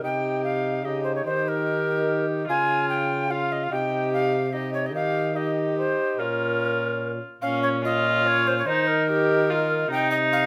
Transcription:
0.03 0.86 C3 medium
0.03 0.83 D#4 medium
0.03 0.84 G4 medium
0.03 0.44 G5 medium
0.44 0.86 F5 medium
0.85 1.25 C#3 medium
0.85 1.25 D#4 medium
0.85 1.25 G4 medium
0.85 1.03 D#5 medium
1.03 1.15 C5 medium
1.16 1.25 C#5 medium
1.25 2.46 D#3 medium
1.25 2.47 D#4 medium
1.25 2.47 G4 medium
1.25 1.50 C5 medium
1.48 2.26 A#4 medium
2.48 3.67 C#3 medium
2.48 3.26 F4 medium
2.48 3.27 F4 medium
2.48 2.89 G#5 medium
2.89 3.32 G5 medium
3.30 3.70 F4 medium
3.30 3.73 F4 medium
3.30 3.54 F5 medium
3.52 3.65 D#5 medium
3.64 3.72 F5 medium
3.71 4.95 C3 medium
3.71 4.37 D#4 medium
3.71 4.52 G4 medium
3.71 4.12 G5 medium
4.13 4.54 F5 medium
4.53 4.94 D#4 medium
4.53 4.93 G4 medium
4.53 4.73 D#5 medium
4.74 4.88 C#5 medium
4.86 4.95 D#5 medium
4.93 6.00 D#3 medium
4.93 5.34 D#4 medium
4.93 5.35 G4 medium
4.93 5.38 F5 medium
5.35 6.21 D#4 medium
5.35 6.20 G4 medium
5.35 5.77 D#5 medium
5.78 6.20 C5 medium
6.17 7.20 A#2 medium
6.17 7.23 C#4 medium
6.17 7.23 F4 medium
6.17 7.12 A#4 medium
7.42 8.62 A#2 medium
7.42 7.81 C#4 medium
7.42 8.21 C#4 medium
7.42 7.62 F5 medium
7.63 7.69 C#5 loud
7.84 8.65 F4 medium
7.84 8.29 D#5 medium
8.26 8.68 C#4 medium
8.26 8.49 C#5 loud
8.47 8.57 C5 medium
8.59 8.68 C#5 medium
8.66 9.87 D#3 medium
8.66 9.90 D#4 medium
8.66 9.07 D#4 medium
8.66 8.89 C5 loud
8.87 9.90 A#4 loud
9.10 9.52 G4 medium
9.50 9.90 F4 medium
9.89 10.46 C3 medium
9.89 10.46 D#4 medium
9.89 10.10 G5 loud
10.11 10.17 D#5 loud
10.33 10.46 F5 loud

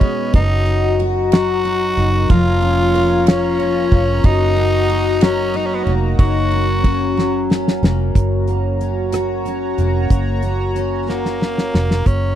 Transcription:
0.00 0.32 F1 medium
0.00 0.34 B2 medium
0.00 0.41 G#3 medium
0.00 0.41 B3 medium
0.00 0.35 C#4 medium
0.00 0.41 D#4 medium
0.00 0.41 F#4 medium
0.00 0.32 G#4 medium
0.00 2.26 D#5 medium
0.00 0.32 B5 loud
0.00 kick medium
0.00 ride soft
0.33 1.94 F#1 medium
0.33 2.30 F#2 medium
0.33 1.02 D#4 loud
0.33 2.28 F#4 medium
0.33 1.94 F#4 loud
0.33 2.28 A#5 medium
0.33 kick loud
0.33 ride medium
0.66 1.63 D#4 medium
0.66 ride soft
0.99 2.36 F#4 medium
0.99 ride soft
1.32 2.29 F#3 medium
1.32 2.32 F#4 loud
1.32 snare loud
1.32 ride medium
1.65 2.36 D#4 medium
1.65 ride soft
1.97 2.28 F#1 medium
1.97 3.26 A#3 medium
1.97 2.30 D#4 medium
1.97 ride soft
2.30 3.88 F1 loud
2.30 4.24 F3 medium
2.30 4.22 F4 medium
2.30 3.27 F4 loud
2.30 4.25 F4 loud
2.30 4.23 C#5 medium
2.30 8.11 A#5 medium
2.30 kick loud
2.30 ride medium
2.62 3.59 C#4 medium
2.62 ride soft
2.94 4.89 A#4 medium
2.94 ride soft
3.26 3.91 A#3 medium
3.26 4.27 C#4 medium
3.26 snare loud
3.26 ride medium
3.59 4.56 C#4 medium
3.59 ride soft
3.91 4.23 F1 medium
3.91 5.86 A#3 medium
3.91 kick medium
3.91 ride soft
4.23 5.82 F#1 loud
4.23 5.24 D#4 loud
4.23 8.11 F#4 medium
4.23 5.93 F#4 loud
4.23 6.16 D#5 medium
4.23 kick loud
4.23 ride medium
4.56 5.53 D#4 medium
4.56 ride soft
4.89 6.83 F#4 medium
4.89 ride soft
5.21 7.17 F#3 medium
5.21 5.58 C#4 medium
5.21 snare loud
5.21 ride medium
5.54 6.25 D#4 medium
5.54 5.68 D#4 medium
5.54 ride soft
5.66 5.76 C#4 medium
5.74 5.85 B3 medium
5.83 6.17 F1 medium
5.83 7.83 A#3 medium
5.83 5.92 C#4 medium
5.83 ride soft
6.19 7.79 F#1 medium
6.19 6.73 D#4 medium
6.19 7.46 F#4 loud
6.19 8.13 C#5 medium
6.19 kick loud
6.19 ride medium
6.51 7.50 C#4 medium
6.51 ride soft
6.78 6.85 C4 medium
6.84 7.83 C#4 medium
6.84 9.12 F#4 medium
6.84 kick medium
6.84 ride soft
7.17 10.67 F#3 medium
7.17 snare medium
7.50 8.81 C#4 medium
7.50 snare medium
7.68 snare medium
7.83 8.13 F1 medium
7.83 8.48 A#3 medium
7.83 snare loud
8.15 9.74 F#1 medium
8.15 12.03 F#4 medium
8.15 12.03 C#5 medium
8.15 12.02 A#5 medium
8.15 kick medium
8.15 closed hi-hat medium
8.47 9.77 A#3 soft
8.47 closed hi-hat soft
8.81 9.45 C#4 soft
8.81 closed hi-hat soft
9.12 11.08 F#4 medium
9.12 cross-stick medium
9.12 closed hi-hat medium
9.45 10.75 C#4 medium
9.45 closed hi-hat soft
9.78 10.09 F1 medium
9.78 10.43 A#3 soft
9.78 closed hi-hat soft
10.10 11.70 F#1 medium
10.10 kick medium
10.10 closed hi-hat medium
10.43 11.73 A#3 medium
10.43 closed hi-hat soft
10.76 11.41 C#4 soft
10.76 closed hi-hat soft
11.08 12.08 A#3 medium
11.08 12.35 F#4 medium
11.08 snare soft
11.26 snare soft
11.41 12.35 C#4 soft
11.41 snare medium
11.58 snare medium
11.74 12.05 F1 medium
11.74 12.35 A#3 soft
11.74 snare medium
11.91 snare medium
12.06 12.35 F#1 medium
12.06 12.35 C#4 medium
12.06 12.35 F#4 medium
12.06 12.35 C#5 medium
12.06 12.35 A#5 medium
12.06 kick medium
12.06 closed hi-hat medium

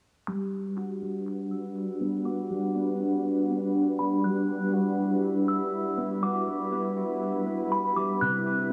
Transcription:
0.27 8.73 G3 medium
0.27 1.01 G3 medium
0.27 8.17 D4 medium
0.27 4.20 F#4 medium
0.27 8.73 B4 medium
0.27 0.74 F#6 medium
0.77 2.25 F#4 medium
1.02 2.49 G3 medium
1.51 2.22 E6 medium
2.01 2.74 B3 medium
2.25 2.99 F#4 medium
2.25 2.72 D6 medium
2.50 3.98 G3 medium
2.76 3.49 B3 medium
3.00 4.49 F#4 medium
3.51 4.99 B3 medium
3.99 4.23 G3 medium
3.99 4.23 B5 medium
4.24 4.97 G3 medium
4.24 8.73 E4 medium
4.24 4.71 F#6 loud
4.73 6.21 F#4 medium
4.98 6.46 G3 medium
5.48 6.19 E6 medium
5.98 6.71 B3 medium
6.23 6.96 F#4 medium
6.23 6.69 D6 medium
6.47 7.95 G3 medium
6.72 7.45 B3 medium
6.97 8.21 F#4 medium
7.46 8.21 B3 medium
7.72 7.95 B5 medium
7.96 8.21 G3 medium
7.96 8.20 D6 medium
8.21 8.73 C3 medium
8.21 8.68 F#6 loud

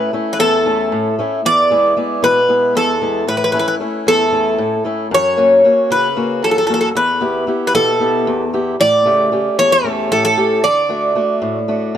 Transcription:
0.00 0.12 A2 medium
0.00 0.12 A3 soft
0.00 0.12 C#4 soft
0.00 0.13 E4 medium
0.00 0.10 B4 medium
0.13 0.55 A3 soft
0.13 0.56 C#4 soft
0.13 0.56 E4 soft
0.33 0.39 B4 medium
0.39 0.90 E2 medium
0.39 1.15 A4 medium
0.66 1.08 A3 soft
0.66 1.08 C#4 soft
0.66 1.08 E4 soft
0.92 1.43 A2 medium
1.19 1.40 A3 soft
1.19 1.40 C#4 soft
1.19 1.40 E4 medium
1.45 1.96 E2 medium
1.45 2.23 D5 loud
1.71 1.96 G#3 soft
1.71 1.96 B3 soft
1.71 1.97 E4 medium
1.97 2.39 G#3 soft
1.97 2.39 B3 soft
1.97 2.40 E4 soft
2.23 2.74 B2 medium
2.23 2.76 B4 medium
2.49 2.91 G#3 soft
2.49 2.91 B3 soft
2.49 2.92 E4 soft
2.75 3.26 E2 medium
2.75 3.28 A4 medium
3.01 3.23 G#3 soft
3.01 3.23 B3 soft
3.01 3.23 E4 soft
3.27 3.79 A2 medium
3.27 3.35 B4 medium
3.37 3.43 B4 medium
3.44 3.51 B4 medium
3.52 3.79 A3 soft
3.52 3.79 C#4 soft
3.52 3.80 E4 medium
3.52 3.58 B4 medium
3.59 3.66 B4 medium
3.68 3.74 B4 medium
3.80 4.22 A3 soft
3.80 4.23 C#4 soft
3.80 4.23 E4 soft
4.07 4.58 E2 medium
4.07 4.82 A4 medium
4.32 4.74 A3 soft
4.32 4.75 C#4 soft
4.32 4.75 E4 soft
4.58 5.10 A2 medium
4.85 5.06 A3 soft
4.85 5.07 C#4 soft
4.85 5.07 E4 soft
5.11 5.63 F#2 medium
5.11 5.91 C#5 loud
5.37 5.63 A#3 soft
5.37 5.64 C#4 soft
5.37 5.64 F#4 medium
5.64 6.06 A#3 soft
5.64 6.07 C#4 soft
5.64 6.07 F#4 soft
5.90 6.42 C#3 medium
5.90 6.44 B4 medium
6.16 6.59 A#3 soft
6.16 6.59 C#4 soft
6.16 6.59 F#4 soft
6.42 6.94 F#2 medium
6.42 6.50 A4 medium
6.51 6.57 A4 medium
6.58 6.65 A4 medium
6.67 6.90 A#3 soft
6.67 6.91 C#4 soft
6.67 6.91 F#4 soft
6.67 6.73 A4 medium
6.74 6.80 A4 medium
6.81 6.88 A4 medium
6.95 7.47 E2 medium
6.95 7.45 B4 medium
7.21 7.46 B3 soft
7.21 7.47 E4 soft
7.21 7.47 G4 medium
7.47 7.90 B3 soft
7.47 7.90 E4 soft
7.47 7.90 G4 soft
7.67 7.74 B4 medium
7.74 8.25 B2 medium
7.74 8.50 A4 medium
8.00 8.42 B3 soft
8.00 8.43 E4 soft
8.00 8.43 G4 medium
8.27 8.78 E2 medium
8.53 8.75 B3 soft
8.53 8.75 E4 soft
8.53 8.75 G4 medium
8.80 9.31 A2 medium
8.80 9.58 D5 loud
9.06 9.48 C#3 soft
9.06 9.31 A3 soft
9.06 9.32 G4 medium
9.32 9.74 A3 soft
9.32 9.74 C#4 soft
9.32 9.75 G4 soft
9.58 10.09 E2 medium
9.58 9.71 C#5 medium
9.72 10.11 A4 medium
9.84 10.27 A3 soft
9.84 10.27 C#4 soft
9.84 10.27 G4 medium
10.11 10.62 A2 medium
10.11 10.24 A4 medium
10.25 10.65 A4 medium
10.37 10.58 A3 soft
10.37 10.58 C#4 soft
10.37 10.59 G4 soft
10.64 11.15 D3 medium
10.64 11.91 D5 medium
10.89 11.14 A3 soft
10.89 11.14 D4 soft
10.89 11.15 F#4 medium
11.15 11.58 A3 soft
11.15 11.58 D4 soft
11.15 11.58 F#4 soft
11.42 11.93 A2 medium
11.68 11.97 A3 soft
11.68 11.97 D4 soft
11.68 11.97 F#4 soft

